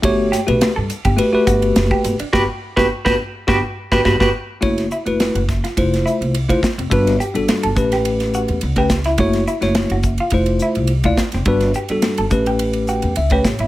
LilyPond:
<<
  \new Staff \with { instrumentName = "Clean electric guitar" } { \time 4/4 \key g \lydian \tempo 4 = 105 r8 g'8 r16 a'8 g'8 r16 fis'8 r16 g'8 d'16 | <fis' g' b'>16 r8 <fis' g' b'>16 r16 <fis' g' b'>16 r8 <fis' g' b'>16 r8 <fis' g' b'>16 <fis' g' b'>16 <fis' g' b'>16 r8 | r8 e'8 r16 fis'8 f'8 r16 e'8 r16 f'8 c'16 | r8 g'8 r16 a'8 g'8 r16 fis'8 r16 g'8 e'16 |
r8 e'8 r16 fis'8 f'8 r16 e'8 r16 f'8 c'16 | r8 g'8 r16 a'8 g'8 r16 fis'8 r16 g'8 e'16 | }
  \new Staff \with { instrumentName = "Tine electric piano" } { \time 4/4 \key g \lydian << { r1 | <fis' g' b'>16 r8 <fis' g' b'>16 r16 <fis' g' b'>16 r8 <fis' g' b'>16 r8 <fis' g' b'>16 <fis' g' b'>16 <fis' g' b'>16 r8 | r1 | r1 |
r1 | r2 r8 g''8 e''16 cis''8. | } \\ { <a fis' g' cis''>8 r16 <a fis' g' b'>8 <g' b'>16 r8 <a fis' g' b'>16 <a fis' g' b'>4. r16 | r1 | <a e' fis' cis''>8 <fis' e''>16 <a e' fis' b'>8 r16 <fis' e''>16 r16 <a e' f' c''>4 r16 <a e' f' c''>16 f'16 r16 | <g d' fis' b'>8 <fis' b'>16 <g d' fis' a'>8 r16 <a cis' g' b'>4. r16 <a cis' g' b'>16 <g' b'>16 r16 |
<a e' fis' cis''>8 <fis' cis''>16 <a e' fis' cis''>8 r16 <fis' e''>16 r16 <a e' f' c''>4 r16 <a e' f' d''>16 <f' c''>16 r16 | <g d' fis' b'>8 <fis' b'>16 <g d' fis' a'>8 r16 <a cis' g' b'>4. r16 <a cis' g' b'>16 <g' a'>16 r16 | } >> }
  \new Staff \with { instrumentName = "Upright bass" } { \clef bass \time 4/4 \key g \lydian g,,8 r16 b,,16 r16 g,16 r16 g,,16 r8 g,,8 fis,,16 r16 g,,16 r16 | g,,16 r8 g,,16 r16 g,,16 r8 g,,16 r8 g,,16 g,,16 g,,16 r8 | fis,,8 r16 fis,,8 fis,,8 r16 f,,8 r16 c,8 d,16 r16 f,,16 | g,,8 r16 g,,16 r16 g,,16 a,,4~ a,,16 e,16 cis,4 |
fis,,8 r16 fis,,8 fis,,8 r16 f,,8 r16 c,8 d,16 r16 f,,16 | g,,8 r16 g,,16 r16 g,,16 a,,4~ a,,16 e,16 cis,8 a,,16 g,,16 | }
  \new DrumStaff \with { instrumentName = "Drums" } \drummode { \time 4/4 <bd cymr>8 <hhp cymr sn>16 cymr16 <cymr sn>8 <hhp cymr>16 <bd cymr>16 cymr8 <hhp bd cymr>16 cymr16 <cymr sn>16 bd16 <hhp cymr>16 cymr16 | <bd sn>8. <bd sn>16 r16 <bd sn>8. <bd sn>8. <bd sn>16 <bd sn>16 <bd sn>8. | <bd cymr>16 <cymr sn>16 hhp16 cymr16 <cymr sn>16 cymr16 <hhp bd sn>16 <cymr sn>16 <bd cymr>16 <cymr sn>16 hhp16 cymr16 cymr16 <bd cymr>16 <hhp bd sn>16 cymr16 | <bd cymr>16 <cymr sn>16 hhp16 cymr16 <cymr sn>16 cymr16 <hhp bd>16 <cymr sn>16 cymr16 <cymr sn>16 hhp16 cymr16 cymr16 <bd cymr>16 <hhp bd sn>16 <cymr sn>16 |
<bd cymr>16 <cymr sn>16 hhp16 <cymr sn>16 <cymr sn>16 cymr16 <hhp bd>16 cymr16 <bd cymr>16 cymr16 hhp16 cymr16 cymr16 <bd cymr>16 <hhp bd sn>16 <cymr sn>16 | <bd cymr>16 <cymr sn>16 hhp16 cymr16 <cymr sn>16 cymr16 <hhp bd>16 cymr16 cymr16 cymr16 hhp16 cymr16 cymr16 <bd cymr>16 <hhp bd sn>16 cymr16 | }
>>